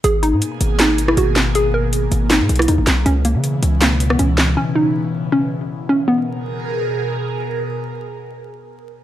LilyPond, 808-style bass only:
\new Staff \with { instrumentName = "808-style bass" } { \clef bass \time 4/4 \key gis \minor \tempo 4 = 159 gis,,8. gis,16 r8 gis,,4. gis,,4~ | gis,,4. gis,,8. gis,16 b,,8 dis,16 gis,,16 b,,8 | cis,8. cis8. cis,4. cis,4 | r1 |
r1 | r1 | }